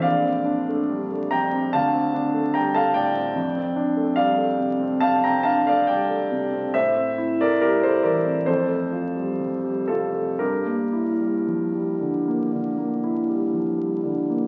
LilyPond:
<<
  \new Staff \with { instrumentName = "Grand piano" } { \time 4/4 \key g \dorian \tempo 4 = 70 <d'' f''>4. <g'' bes''>8 <f'' a''>4 <g'' bes''>16 <f'' a''>16 <d'' g''>8~ | <d'' g''>4 <d'' f''>4 <f'' a''>16 <g'' bes''>16 <f'' a''>16 <d'' f''>16 <d'' g''>8 r8 | <c'' e''>8. <bes' d''>16 <g' bes'>16 <a' c''>16 <bes' d''>8 <a' c''>4. <f' a'>8 | <g' bes'>2.~ <g' bes'>8 r8 | }
  \new Staff \with { instrumentName = "Grand piano" } { \time 4/4 \key g \dorian bes,,16 c'16 d'16 a16 g16 a16 f,16 c'16 d,16 c'16 d'16 a16 g16 a16 a,16 c'16 | f,16 c'16 d'16 a16 g16 a16 c16 c'16 c16 c'16 d'16 a16 g16 a16 c16 c'16 | a,16 c'16 e'16 a16 g16 a16 e16 c'16 f,16 a16 f'16 g16 f16 g16 c16 a16 | g,16 bes16 e'16 g16 f16 g16 d16 bes16 d16 bes16 e'16 g16 f16 g16 d16 bes16 | }
>>